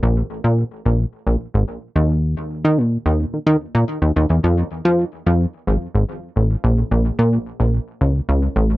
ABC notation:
X:1
M:4/4
L:1/16
Q:1/4=109
K:Bbm
V:1 name="Analog synth bass" clef=bass
B,,,2 z B,,2 z B,,,2 z B,,, z A,,, z2 E,,2- | E,,2 z E, B,,2 E,,2 E, E, z B,, z E,, E,, =E,, | F,,2 z F,2 z F,,2 z A,,, z A,,, z2 =A,,,2 | B,,,2 B,,,2 B,,2 z B,,,2 z D,,2 D,,2 =A,,,2 |]